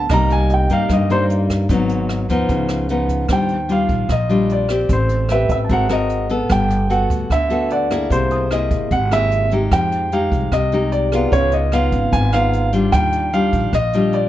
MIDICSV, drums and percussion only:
0, 0, Header, 1, 2, 480
1, 0, Start_track
1, 0, Key_signature, -3, "major"
1, 0, Tempo, 400802
1, 120, Time_signature, 4, 2, 24, 8
1, 17112, End_track
2, 0, Start_track
2, 0, Title_t, "Drums"
2, 114, Note_on_c, 9, 37, 64
2, 114, Note_on_c, 9, 42, 57
2, 117, Note_on_c, 9, 36, 61
2, 234, Note_off_c, 9, 37, 0
2, 234, Note_off_c, 9, 42, 0
2, 237, Note_off_c, 9, 36, 0
2, 359, Note_on_c, 9, 42, 38
2, 479, Note_off_c, 9, 42, 0
2, 592, Note_on_c, 9, 42, 36
2, 711, Note_off_c, 9, 42, 0
2, 831, Note_on_c, 9, 42, 41
2, 833, Note_on_c, 9, 36, 21
2, 950, Note_off_c, 9, 42, 0
2, 953, Note_off_c, 9, 36, 0
2, 1070, Note_on_c, 9, 37, 52
2, 1070, Note_on_c, 9, 42, 47
2, 1072, Note_on_c, 9, 36, 46
2, 1189, Note_off_c, 9, 37, 0
2, 1189, Note_off_c, 9, 42, 0
2, 1192, Note_off_c, 9, 36, 0
2, 1316, Note_on_c, 9, 42, 43
2, 1436, Note_off_c, 9, 42, 0
2, 1553, Note_on_c, 9, 42, 47
2, 1673, Note_off_c, 9, 42, 0
2, 1790, Note_on_c, 9, 36, 26
2, 1796, Note_on_c, 9, 37, 57
2, 1796, Note_on_c, 9, 42, 49
2, 1910, Note_off_c, 9, 36, 0
2, 1915, Note_off_c, 9, 37, 0
2, 1915, Note_off_c, 9, 42, 0
2, 2028, Note_on_c, 9, 36, 57
2, 2028, Note_on_c, 9, 42, 66
2, 2148, Note_off_c, 9, 36, 0
2, 2148, Note_off_c, 9, 42, 0
2, 2265, Note_on_c, 9, 42, 41
2, 2385, Note_off_c, 9, 42, 0
2, 2505, Note_on_c, 9, 37, 51
2, 2505, Note_on_c, 9, 42, 41
2, 2625, Note_off_c, 9, 37, 0
2, 2625, Note_off_c, 9, 42, 0
2, 2745, Note_on_c, 9, 36, 23
2, 2747, Note_on_c, 9, 42, 44
2, 2864, Note_off_c, 9, 36, 0
2, 2866, Note_off_c, 9, 42, 0
2, 2983, Note_on_c, 9, 36, 50
2, 2983, Note_on_c, 9, 42, 44
2, 3102, Note_off_c, 9, 36, 0
2, 3102, Note_off_c, 9, 42, 0
2, 3218, Note_on_c, 9, 37, 60
2, 3218, Note_on_c, 9, 42, 40
2, 3338, Note_off_c, 9, 37, 0
2, 3338, Note_off_c, 9, 42, 0
2, 3457, Note_on_c, 9, 42, 41
2, 3577, Note_off_c, 9, 42, 0
2, 3699, Note_on_c, 9, 36, 27
2, 3700, Note_on_c, 9, 42, 42
2, 3819, Note_off_c, 9, 36, 0
2, 3820, Note_off_c, 9, 42, 0
2, 3935, Note_on_c, 9, 37, 61
2, 3935, Note_on_c, 9, 42, 55
2, 3940, Note_on_c, 9, 36, 55
2, 4054, Note_off_c, 9, 37, 0
2, 4054, Note_off_c, 9, 42, 0
2, 4059, Note_off_c, 9, 36, 0
2, 4173, Note_on_c, 9, 42, 35
2, 4293, Note_off_c, 9, 42, 0
2, 4415, Note_on_c, 9, 42, 33
2, 4535, Note_off_c, 9, 42, 0
2, 4657, Note_on_c, 9, 42, 36
2, 4658, Note_on_c, 9, 36, 46
2, 4776, Note_off_c, 9, 42, 0
2, 4777, Note_off_c, 9, 36, 0
2, 4899, Note_on_c, 9, 36, 46
2, 4900, Note_on_c, 9, 37, 49
2, 4900, Note_on_c, 9, 42, 42
2, 5019, Note_off_c, 9, 36, 0
2, 5020, Note_off_c, 9, 37, 0
2, 5020, Note_off_c, 9, 42, 0
2, 5142, Note_on_c, 9, 42, 35
2, 5262, Note_off_c, 9, 42, 0
2, 5381, Note_on_c, 9, 42, 43
2, 5501, Note_off_c, 9, 42, 0
2, 5613, Note_on_c, 9, 37, 53
2, 5613, Note_on_c, 9, 42, 44
2, 5733, Note_off_c, 9, 37, 0
2, 5733, Note_off_c, 9, 42, 0
2, 5857, Note_on_c, 9, 42, 60
2, 5858, Note_on_c, 9, 36, 58
2, 5977, Note_off_c, 9, 42, 0
2, 5978, Note_off_c, 9, 36, 0
2, 6095, Note_on_c, 9, 42, 40
2, 6215, Note_off_c, 9, 42, 0
2, 6333, Note_on_c, 9, 37, 55
2, 6333, Note_on_c, 9, 42, 34
2, 6453, Note_off_c, 9, 37, 0
2, 6453, Note_off_c, 9, 42, 0
2, 6577, Note_on_c, 9, 42, 38
2, 6578, Note_on_c, 9, 36, 50
2, 6697, Note_off_c, 9, 36, 0
2, 6697, Note_off_c, 9, 42, 0
2, 6816, Note_on_c, 9, 42, 42
2, 6819, Note_on_c, 9, 36, 44
2, 6935, Note_off_c, 9, 42, 0
2, 6939, Note_off_c, 9, 36, 0
2, 7057, Note_on_c, 9, 37, 55
2, 7057, Note_on_c, 9, 42, 41
2, 7177, Note_off_c, 9, 37, 0
2, 7177, Note_off_c, 9, 42, 0
2, 7299, Note_on_c, 9, 42, 37
2, 7418, Note_off_c, 9, 42, 0
2, 7535, Note_on_c, 9, 42, 38
2, 7655, Note_off_c, 9, 42, 0
2, 7781, Note_on_c, 9, 37, 61
2, 7781, Note_on_c, 9, 42, 53
2, 7782, Note_on_c, 9, 36, 59
2, 7901, Note_off_c, 9, 37, 0
2, 7901, Note_off_c, 9, 42, 0
2, 7902, Note_off_c, 9, 36, 0
2, 8027, Note_on_c, 9, 42, 38
2, 8146, Note_off_c, 9, 42, 0
2, 8263, Note_on_c, 9, 42, 36
2, 8383, Note_off_c, 9, 42, 0
2, 8504, Note_on_c, 9, 36, 50
2, 8507, Note_on_c, 9, 42, 41
2, 8624, Note_off_c, 9, 36, 0
2, 8627, Note_off_c, 9, 42, 0
2, 8744, Note_on_c, 9, 36, 40
2, 8750, Note_on_c, 9, 37, 48
2, 8750, Note_on_c, 9, 42, 39
2, 8864, Note_off_c, 9, 36, 0
2, 8870, Note_off_c, 9, 37, 0
2, 8870, Note_off_c, 9, 42, 0
2, 8982, Note_on_c, 9, 42, 41
2, 9101, Note_off_c, 9, 42, 0
2, 9222, Note_on_c, 9, 42, 40
2, 9342, Note_off_c, 9, 42, 0
2, 9470, Note_on_c, 9, 37, 56
2, 9470, Note_on_c, 9, 42, 43
2, 9589, Note_off_c, 9, 37, 0
2, 9589, Note_off_c, 9, 42, 0
2, 9707, Note_on_c, 9, 36, 58
2, 9714, Note_on_c, 9, 42, 65
2, 9826, Note_off_c, 9, 36, 0
2, 9833, Note_off_c, 9, 42, 0
2, 9943, Note_on_c, 9, 42, 38
2, 10063, Note_off_c, 9, 42, 0
2, 10189, Note_on_c, 9, 37, 52
2, 10189, Note_on_c, 9, 42, 41
2, 10308, Note_off_c, 9, 37, 0
2, 10308, Note_off_c, 9, 42, 0
2, 10425, Note_on_c, 9, 42, 39
2, 10428, Note_on_c, 9, 36, 53
2, 10545, Note_off_c, 9, 42, 0
2, 10548, Note_off_c, 9, 36, 0
2, 10667, Note_on_c, 9, 42, 40
2, 10670, Note_on_c, 9, 36, 40
2, 10787, Note_off_c, 9, 42, 0
2, 10789, Note_off_c, 9, 36, 0
2, 10916, Note_on_c, 9, 37, 52
2, 10916, Note_on_c, 9, 42, 40
2, 11035, Note_off_c, 9, 37, 0
2, 11035, Note_off_c, 9, 42, 0
2, 11154, Note_on_c, 9, 42, 39
2, 11273, Note_off_c, 9, 42, 0
2, 11389, Note_on_c, 9, 42, 35
2, 11509, Note_off_c, 9, 42, 0
2, 11634, Note_on_c, 9, 36, 56
2, 11635, Note_on_c, 9, 37, 60
2, 11635, Note_on_c, 9, 42, 56
2, 11753, Note_off_c, 9, 36, 0
2, 11755, Note_off_c, 9, 37, 0
2, 11755, Note_off_c, 9, 42, 0
2, 11877, Note_on_c, 9, 42, 37
2, 11996, Note_off_c, 9, 42, 0
2, 12118, Note_on_c, 9, 42, 37
2, 12238, Note_off_c, 9, 42, 0
2, 12356, Note_on_c, 9, 36, 52
2, 12361, Note_on_c, 9, 42, 38
2, 12476, Note_off_c, 9, 36, 0
2, 12481, Note_off_c, 9, 42, 0
2, 12596, Note_on_c, 9, 36, 44
2, 12596, Note_on_c, 9, 37, 45
2, 12596, Note_on_c, 9, 42, 39
2, 12716, Note_off_c, 9, 36, 0
2, 12716, Note_off_c, 9, 37, 0
2, 12716, Note_off_c, 9, 42, 0
2, 12836, Note_on_c, 9, 42, 36
2, 12955, Note_off_c, 9, 42, 0
2, 13075, Note_on_c, 9, 42, 37
2, 13195, Note_off_c, 9, 42, 0
2, 13318, Note_on_c, 9, 37, 50
2, 13318, Note_on_c, 9, 42, 42
2, 13437, Note_off_c, 9, 37, 0
2, 13437, Note_off_c, 9, 42, 0
2, 13558, Note_on_c, 9, 36, 55
2, 13561, Note_on_c, 9, 42, 60
2, 13677, Note_off_c, 9, 36, 0
2, 13681, Note_off_c, 9, 42, 0
2, 13793, Note_on_c, 9, 42, 38
2, 13913, Note_off_c, 9, 42, 0
2, 14035, Note_on_c, 9, 37, 47
2, 14035, Note_on_c, 9, 42, 38
2, 14155, Note_off_c, 9, 37, 0
2, 14155, Note_off_c, 9, 42, 0
2, 14277, Note_on_c, 9, 42, 41
2, 14278, Note_on_c, 9, 36, 45
2, 14397, Note_off_c, 9, 42, 0
2, 14398, Note_off_c, 9, 36, 0
2, 14521, Note_on_c, 9, 36, 43
2, 14522, Note_on_c, 9, 42, 47
2, 14641, Note_off_c, 9, 36, 0
2, 14641, Note_off_c, 9, 42, 0
2, 14762, Note_on_c, 9, 37, 52
2, 14762, Note_on_c, 9, 42, 41
2, 14881, Note_off_c, 9, 37, 0
2, 14881, Note_off_c, 9, 42, 0
2, 15007, Note_on_c, 9, 42, 42
2, 15126, Note_off_c, 9, 42, 0
2, 15240, Note_on_c, 9, 42, 44
2, 15360, Note_off_c, 9, 42, 0
2, 15476, Note_on_c, 9, 37, 53
2, 15476, Note_on_c, 9, 42, 54
2, 15482, Note_on_c, 9, 36, 61
2, 15596, Note_off_c, 9, 37, 0
2, 15596, Note_off_c, 9, 42, 0
2, 15602, Note_off_c, 9, 36, 0
2, 15716, Note_on_c, 9, 42, 36
2, 15836, Note_off_c, 9, 42, 0
2, 15966, Note_on_c, 9, 42, 35
2, 16085, Note_off_c, 9, 42, 0
2, 16199, Note_on_c, 9, 42, 37
2, 16203, Note_on_c, 9, 36, 50
2, 16319, Note_off_c, 9, 42, 0
2, 16323, Note_off_c, 9, 36, 0
2, 16442, Note_on_c, 9, 36, 45
2, 16442, Note_on_c, 9, 37, 43
2, 16442, Note_on_c, 9, 42, 44
2, 16562, Note_off_c, 9, 36, 0
2, 16562, Note_off_c, 9, 37, 0
2, 16562, Note_off_c, 9, 42, 0
2, 16681, Note_on_c, 9, 42, 37
2, 16801, Note_off_c, 9, 42, 0
2, 16918, Note_on_c, 9, 42, 37
2, 17037, Note_off_c, 9, 42, 0
2, 17112, End_track
0, 0, End_of_file